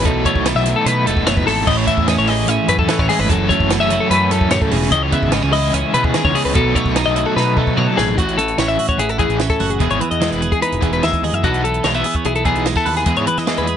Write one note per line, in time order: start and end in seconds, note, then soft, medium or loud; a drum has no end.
0.00 0.25 B2 loud
0.00 1.27 E3 medium
0.00 0.93 E4 medium
0.05 0.23 B1 medium
0.05 1.27 B2 medium
0.05 0.25 F#3 loud
0.05 0.25 A3 loud
0.05 0.23 D#4 loud
0.05 0.26 A4 medium
0.05 kick loud
0.05 closed hi-hat loud
0.24 0.44 B2 medium
0.24 0.45 F#3 medium
0.24 0.46 A3 medium
0.24 1.07 A3 medium
0.24 0.47 D#4 medium
0.24 0.46 C#5 medium
0.24 kick medium
0.24 closed hi-hat medium
0.35 0.53 B1 medium
0.35 kick medium
0.45 0.86 B2 medium
0.45 0.67 F#3 medium
0.45 0.67 A3 medium
0.45 0.87 B3 medium
0.45 0.64 D#4 medium
0.45 snare loud
0.45 closed hi-hat loud
0.55 0.73 B1 medium
0.55 0.76 E5 medium
0.55 snare soft
0.66 1.07 F#3 medium
0.66 1.07 A3 medium
0.66 1.05 D#4 medium
0.66 closed hi-hat medium
0.76 0.86 A4 medium
0.86 1.04 B2 loud
0.86 1.68 B3 medium
0.86 1.06 B4 medium
0.86 closed hi-hat loud
1.06 1.25 E1 medium
1.06 1.25 F#3 medium
1.06 1.27 A3 medium
1.06 1.48 A3 medium
1.06 1.27 D#4 medium
1.06 1.27 A4 medium
1.06 closed hi-hat medium
1.17 kick medium
1.26 1.45 F#1 medium
1.26 1.66 B2 medium
1.26 2.88 E3 medium
1.26 1.47 F#3 medium
1.26 1.47 A3 medium
1.26 1.45 D#4 medium
1.26 1.37 C#5 medium
1.26 snare loud
1.26 closed hi-hat loud
1.37 1.47 B4 medium
1.37 kick loud
1.46 1.65 G#1 medium
1.46 1.67 F#3 medium
1.46 1.68 A3 medium
1.46 2.32 A3 medium
1.46 1.66 D#4 medium
1.46 1.68 A4 medium
1.46 snare soft
1.46 open hi-hat medium
1.66 1.85 A1 medium
1.66 1.88 A2 loud
1.66 3.27 A2 medium
1.66 1.89 E3 medium
1.66 1.89 A3 loud
1.66 1.87 C#4 loud
1.66 1.87 E4 loud
1.66 1.77 D#5 medium
1.66 kick loud
1.66 crash loud
1.77 1.87 C#5 medium
1.87 2.29 A2 medium
1.87 2.07 E3 medium
1.87 2.08 A3 medium
1.87 2.09 C#4 medium
1.87 2.09 E4 medium
1.87 2.08 E5 medium
1.87 kick medium
1.87 closed hi-hat medium
1.98 2.16 E2 loud
1.98 kick medium
2.07 2.89 E3 medium
2.07 2.29 A3 medium
2.07 2.29 C#4 medium
2.07 2.49 C#4 medium
2.07 2.27 E4 medium
2.07 2.18 D#5 medium
2.07 snare loud
2.07 closed hi-hat medium
2.17 2.45 A1 medium
2.17 2.28 C#5 medium
2.17 snare soft
2.27 2.69 A3 medium
2.27 2.69 C#4 medium
2.27 2.67 E4 medium
2.27 3.28 G#4 medium
2.27 2.49 D#5 medium
2.27 open hi-hat medium
2.48 2.57 A1 loud
2.48 3.70 C#4 medium
2.48 2.69 E5 medium
2.48 closed hi-hat loud
2.68 2.87 F#2 loud
2.68 2.89 A3 medium
2.68 2.90 C#4 medium
2.68 2.91 E4 medium
2.68 2.79 B4 medium
2.68 closed hi-hat medium
2.79 2.99 A4 medium
2.79 kick medium
2.88 4.92 E3 medium
2.88 3.30 E3 medium
2.88 3.11 A3 medium
2.88 3.11 C#4 medium
2.88 3.09 E4 medium
2.88 snare loud
2.88 closed hi-hat medium
2.99 3.08 A1 medium
2.99 3.08 C#5 medium
2.99 kick medium
3.09 3.30 G#3 medium
3.09 3.30 A3 medium
3.09 3.31 C#4 medium
3.09 3.31 E4 medium
3.09 3.19 G#4 medium
3.09 open hi-hat medium
3.19 3.29 G1 medium
3.19 3.29 B4 medium
3.29 3.48 F#1 loud
3.29 3.52 F#2 loud
3.29 4.50 F#2 medium
3.29 3.51 C#3 medium
3.29 3.50 F#3 loud
3.29 3.50 A3 loud
3.29 3.50 C#4 loud
3.29 3.50 A4 loud
3.29 kick loud
3.29 closed hi-hat loud
3.49 3.92 F#2 medium
3.49 3.69 C#3 medium
3.49 3.70 F#3 medium
3.49 4.30 A3 medium
3.49 3.71 A3 medium
3.49 3.72 C#4 medium
3.49 3.70 C#5 medium
3.49 kick medium
3.49 closed hi-hat medium
3.60 3.78 F#1 medium
3.60 kick medium
3.70 4.11 C#3 medium
3.70 3.92 F#3 medium
3.70 3.91 A3 medium
3.70 3.81 B3 medium
3.70 3.90 C#4 medium
3.70 snare loud
3.70 closed hi-hat loud
3.80 3.98 F#1 medium
3.80 4.11 C#4 medium
3.80 4.01 E5 medium
3.90 4.33 F#3 medium
3.90 4.32 A3 medium
3.90 4.30 C#4 medium
3.90 5.52 E4 medium
3.90 closed hi-hat medium
4.00 4.10 A4 medium
4.11 4.47 F#2 medium
4.11 4.90 C#4 medium
4.11 4.31 B4 medium
4.11 closed hi-hat loud
4.31 4.50 F#3 medium
4.31 4.90 A3 medium
4.31 4.51 A3 medium
4.31 4.51 C#4 medium
4.31 4.51 A4 medium
4.31 closed hi-hat medium
4.41 kick medium
4.50 4.61 F#2 loud
4.50 4.72 A2 medium
4.50 4.90 C#3 medium
4.50 4.73 F#3 medium
4.50 4.72 A3 medium
4.50 4.70 C#4 medium
4.50 4.62 C#5 medium
4.50 snare loud
4.50 closed hi-hat loud
4.62 4.72 A4 medium
4.62 kick loud
4.71 4.90 E1 loud
4.71 4.91 B2 medium
4.71 4.92 F#3 medium
4.71 4.92 A3 medium
4.71 4.91 C#4 medium
4.71 4.92 G#4 medium
4.71 open hi-hat medium
4.82 snare soft
4.91 5.10 C#2 loud
4.91 6.14 C#3 medium
4.91 5.13 C#3 loud
4.91 5.12 E3 loud
4.91 5.12 G#3 medium
4.91 5.11 C#4 loud
4.91 5.03 D#5 loud
4.91 kick loud
4.91 closed hi-hat loud
5.03 5.13 C#5 medium
5.12 5.31 C#3 medium
5.12 5.32 E3 medium
5.12 5.33 G#3 medium
5.12 5.31 B3 medium
5.12 5.34 C#4 medium
5.12 5.33 E5 medium
5.12 kick medium
5.12 closed hi-hat medium
5.23 5.41 G#1 loud
5.23 kick medium
5.32 5.73 C#3 medium
5.32 5.54 E3 medium
5.32 5.53 G#3 medium
5.32 5.43 B3 medium
5.32 5.52 C#4 medium
5.32 5.43 D#5 medium
5.32 snare loud
5.32 closed hi-hat medium
5.43 5.70 C#2 medium
5.43 5.73 C#4 medium
5.43 5.52 C#5 medium
5.53 5.96 E3 medium
5.53 5.94 G#3 medium
5.53 5.93 C#4 medium
5.53 6.55 E4 medium
5.53 5.74 D#5 medium
5.53 open hi-hat medium
5.74 5.83 C#2 loud
5.74 6.53 C#4 medium
5.74 5.94 E5 medium
5.74 closed hi-hat loud
5.94 6.12 B2 loud
5.94 6.14 E3 medium
5.94 6.15 G#3 medium
5.94 6.52 B3 medium
5.94 6.16 C#4 medium
5.94 6.04 B4 medium
5.94 closed hi-hat medium
6.04 6.25 G#4 medium
6.04 kick medium
6.14 6.54 C#3 medium
6.14 6.34 D#3 medium
6.14 6.36 E3 medium
6.14 6.35 G#3 medium
6.14 6.34 C#4 medium
6.14 snare loud
6.14 closed hi-hat medium
6.25 6.33 C#2 medium
6.25 6.35 C#5 medium
6.25 kick loud
6.35 6.54 C#3 medium
6.35 6.55 E3 medium
6.35 6.55 G#3 medium
6.35 6.54 C#4 medium
6.35 6.45 G#4 medium
6.35 open hi-hat medium
6.45 6.54 C#2 medium
6.45 6.55 B4 medium
6.54 6.73 B1 loud
6.54 6.76 B2 medium
6.54 8.17 B2 medium
6.54 6.75 F#3 loud
6.54 6.74 A3 loud
6.54 6.73 D#4 medium
6.54 6.75 A4 medium
6.54 kick loud
6.54 closed hi-hat loud
6.74 6.94 B2 medium
6.74 6.95 F#3 medium
6.74 6.96 A3 medium
6.74 7.57 A3 medium
6.74 6.96 D#4 medium
6.74 6.96 C#5 medium
6.74 kick medium
6.74 closed hi-hat medium
6.86 7.03 B1 medium
6.86 kick medium
6.95 7.36 B2 medium
6.95 7.17 F#3 medium
6.95 7.15 A3 medium
6.95 7.37 D#4 medium
6.95 7.14 D#4 medium
6.95 snare loud
6.95 closed hi-hat loud
7.06 7.24 B1 medium
7.06 7.26 D#5 medium
7.15 7.58 F#3 medium
7.15 7.57 A3 medium
7.15 7.55 D#4 medium
7.15 7.26 E4 medium
7.15 closed hi-hat medium
7.26 8.18 F#4 medium
7.26 7.36 A4 medium
7.36 7.72 B2 loud
7.36 8.16 D#4 medium
7.36 7.57 B4 medium
7.36 snare medium
7.57 7.76 F#3 medium
7.57 7.77 A3 medium
7.57 7.97 A3 medium
7.57 7.78 D#4 medium
7.57 7.77 A4 medium
7.57 kick medium
7.67 kick medium
7.76 8.16 B2 medium
7.76 7.86 B2 medium
7.76 8.15 F#3 medium
7.76 7.97 F#3 medium
7.76 7.96 A3 medium
7.76 7.95 D#4 medium
7.76 7.87 C#5 medium
7.76 mid tom loud
7.87 7.97 A4 medium
7.96 8.16 A1 loud
7.96 8.17 F#3 medium
7.96 8.16 A3 medium
7.96 8.16 D#4 medium
7.96 8.18 G#4 medium
7.96 snare medium
8.08 floor tom medium
8.17 8.54 A1 loud
8.17 9.79 A2 medium
8.17 8.38 E3 medium
8.17 8.37 A3 medium
8.17 8.37 C#4 medium
8.17 8.37 E4 medium
8.17 8.38 F#4 medium
8.17 8.78 F#4 medium
8.17 kick loud
8.17 closed hi-hat medium
8.29 closed hi-hat soft
8.38 9.19 E3 medium
8.38 8.58 A4 medium
8.38 muted overdriven electric guitar stroke medium
8.38 closed hi-hat medium
8.48 closed hi-hat soft
8.58 8.76 A1 loud
8.58 8.78 E3 medium
8.58 8.78 A3 medium
8.58 8.77 C#4 medium
8.58 9.40 C#4 medium
8.58 8.77 E4 medium
8.58 8.69 C#5 medium
8.58 snare loud
8.58 closed hi-hat medium
8.68 8.88 E5 medium
8.68 closed hi-hat soft
8.78 9.59 F#4 medium
8.78 muted overdriven electric guitar stroke soft
8.78 open hi-hat medium
8.89 8.99 C#5 medium
8.89 kick medium
8.89 closed hi-hat soft
8.98 9.26 A1 medium
8.98 10.62 E4 medium
8.98 9.10 G#4 medium
8.98 muted overdriven electric guitar stroke soft
8.98 closed hi-hat medium
9.09 9.19 A4 medium
9.09 closed hi-hat soft
9.18 10.01 E3 medium
9.18 9.39 E3 medium
9.18 9.39 A3 medium
9.18 9.39 C#4 medium
9.18 9.39 E4 medium
9.18 9.40 G#4 medium
9.18 kick medium
9.18 closed hi-hat medium
9.29 9.47 A1 medium
9.29 closed hi-hat soft
9.39 9.79 C#4 medium
9.39 muted overdriven electric guitar stroke soft
9.39 snare loud
9.39 closed hi-hat medium
9.50 9.71 A4 medium
9.50 kick medium
9.50 closed hi-hat soft
9.60 9.78 F#1 medium
9.60 9.78 F#4 medium
9.60 muted overdriven electric guitar stroke soft
9.60 open hi-hat medium
9.70 9.91 G#4 medium
9.70 closed hi-hat soft
9.80 9.90 E1 loud
9.80 11.44 E2 medium
9.80 10.01 E3 medium
9.80 10.01 G#3 medium
9.80 10.01 B3 medium
9.80 10.01 E4 loud
9.80 10.41 G#4 medium
9.80 kick loud
9.80 closed hi-hat medium
9.90 10.00 G#1 medium
9.90 10.01 C#5 medium
9.90 closed hi-hat soft
10.01 10.82 E3 medium
10.01 10.11 B4 medium
10.01 muted overdriven electric guitar stroke soft
10.01 closed hi-hat medium
10.11 10.33 E2 medium
10.11 10.31 D#5 medium
10.11 closed hi-hat soft
10.21 10.42 E3 medium
10.21 11.02 G#3 medium
10.21 10.41 G#3 medium
10.21 10.41 B3 medium
10.21 10.40 E4 medium
10.21 snare loud
10.21 closed hi-hat medium
10.31 10.49 E1 medium
10.31 10.52 B4 medium
10.31 closed hi-hat soft
10.41 11.23 G#4 medium
10.41 muted overdriven electric guitar stroke soft
10.41 closed hi-hat medium
10.52 10.62 G#4 medium
10.52 kick medium
10.52 closed hi-hat soft
10.62 11.42 D#4 medium
10.62 10.83 B4 medium
10.62 muted overdriven electric guitar stroke soft
10.62 closed hi-hat medium
10.72 10.99 E1 medium
10.72 closed hi-hat soft
10.81 11.01 E3 medium
10.81 11.44 E3 medium
10.81 11.02 G#3 medium
10.81 11.03 B3 medium
10.81 11.02 E4 medium
10.81 10.93 G#4 medium
10.81 kick medium
10.81 closed hi-hat medium
10.93 11.03 B4 medium
10.93 closed hi-hat soft
11.03 11.12 D#2 loud
11.03 11.44 G#3 medium
11.03 11.24 E5 medium
11.03 muted overdriven electric guitar stroke soft
11.03 snare loud
11.03 closed hi-hat medium
11.13 kick medium
11.13 closed hi-hat soft
11.23 11.32 D#2 medium
11.23 11.42 G#4 medium
11.23 11.34 D#5 medium
11.23 muted overdriven electric guitar stroke soft
11.23 open hi-hat medium
11.33 11.42 F#2 medium
11.33 11.44 E5 medium
11.33 closed hi-hat soft
11.44 11.79 B1 loud
11.44 11.64 B2 medium
11.44 11.64 E3 medium
11.44 11.63 F#3 medium
11.44 11.63 B3 medium
11.44 11.84 B3 medium
11.44 11.63 D#4 loud
11.44 12.26 E4 medium
11.44 11.64 F#4 medium
11.44 11.62 A4 medium
11.44 12.05 A4 medium
11.44 kick loud
11.44 closed hi-hat medium
11.54 closed hi-hat soft
11.64 12.45 E3 medium
11.64 11.85 A4 medium
11.64 muted overdriven electric guitar stroke medium
11.64 closed hi-hat medium
11.74 closed hi-hat soft
11.84 12.02 B1 loud
11.84 12.05 F#3 medium
11.84 11.95 G#3 medium
11.84 12.05 B3 medium
11.84 12.04 D#4 medium
11.84 12.04 A4 medium
11.84 11.95 C#5 medium
11.84 snare loud
11.84 closed hi-hat medium
11.94 12.66 B3 soft
11.94 12.16 E5 medium
11.94 closed hi-hat soft
12.04 12.85 G#4 medium
12.04 muted overdriven electric guitar stroke soft
12.04 open hi-hat medium
12.15 12.26 C#5 medium
12.15 kick medium
12.25 12.52 B1 loud
12.25 13.77 E4 medium
12.25 12.35 G#4 medium
12.25 muted overdriven electric guitar stroke soft
12.25 closed hi-hat medium
12.35 12.45 A4 medium
12.35 closed hi-hat soft
12.45 13.26 E3 medium
12.45 12.65 F#3 medium
12.45 12.66 B3 medium
12.45 12.66 D#4 medium
12.45 12.66 G#4 medium
12.45 12.66 A4 medium
12.45 kick medium
12.45 closed hi-hat medium
12.55 12.74 B1 loud
12.55 closed hi-hat soft
12.66 12.76 G#3 medium
12.66 muted overdriven electric guitar stroke soft
12.66 snare loud
12.66 closed hi-hat medium
12.75 13.07 B3 soft
12.75 12.97 A4 medium
12.75 kick medium
12.75 snare soft
12.75 closed hi-hat soft
12.85 13.04 D#2 medium
12.85 13.04 B4 medium
12.85 muted overdriven electric guitar stroke medium
12.85 open hi-hat medium
12.96 13.17 G#4 medium
12.96 snare soft
12.96 closed hi-hat soft
13.05 13.77 E2 medium
13.05 13.16 E2 loud
13.05 13.27 G#3 medium
13.05 13.27 B3 loud
13.05 13.27 E4 medium
13.05 13.68 G#4 medium
13.05 13.27 G#4 medium
13.05 kick loud
13.05 closed hi-hat medium
13.16 13.26 G#2 medium
13.16 13.27 C#5 medium
13.16 closed hi-hat soft
13.27 13.77 E3 medium
13.27 13.38 B4 medium
13.27 muted overdriven electric guitar stroke soft
13.27 closed hi-hat medium
13.37 13.60 E3 medium
13.37 13.58 D#5 medium
13.37 snare soft
13.37 closed hi-hat soft
13.47 13.67 G#3 medium
13.47 13.77 G#3 medium
13.47 13.67 B3 medium
13.47 13.66 E4 medium
13.47 13.66 G#4 medium
13.47 snare loud
13.47 closed hi-hat medium
13.57 13.76 E2 medium
13.57 13.77 B4 medium
13.57 closed hi-hat soft
13.67 13.77 G#4 medium
13.67 muted overdriven electric guitar stroke soft
13.67 closed hi-hat medium